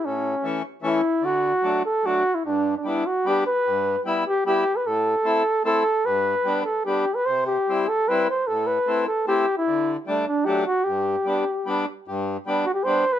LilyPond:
<<
  \new Staff \with { instrumentName = "Flugelhorn" } { \time 3/4 \key g \major \tempo 4 = 150 cis'4. r8 e'4 | fis'4. a'8 fis'8. e'16 | d'8. d'16 e'8 fis'8 g'8 b'8~ | b'4 r8 g'8 g'8. b'16 |
a'2 a'4 | b'4. a'8 g'8. b'16 | c''8 g'4 a'8 b'8 c''8 | a'8 b'4 a'8 g'8. e'16~ |
e'8. r8. d'8 g'8 fis'8 | g'2~ g'8 r8 | r4. fis'16 g'16 c''8. b'16 | }
  \new Staff \with { instrumentName = "Accordion" } { \time 3/4 \key g \major a,4 <e a cis'>8 r8 <e a cis'>8 r8 | d4 <fis a d'>8 r8 <fis a d'>8 r8 | g,4 <g b d'>8 r8 <g b d'>8 r8 | g,4 <g b e'>8 r8 <g b e'>8 r8 |
a,4 <a c' e'>8 r8 <a c' e'>8 r8 | g,4 <g b d'>8 r8 <g b d'>8 r8 | c4 <g c' e'>8 r8 <g c' e'>8 r8 | a,4 <a c' e'>8 r8 <a c' e'>8 r8 |
d4 <g a d'>8 r8 <fis a d'>8 r8 | g,4 <g b d'>8 r8 <g b d'>8 r8 | g,4 <g b d'>8 r8 <g b d'>8 r8 | }
>>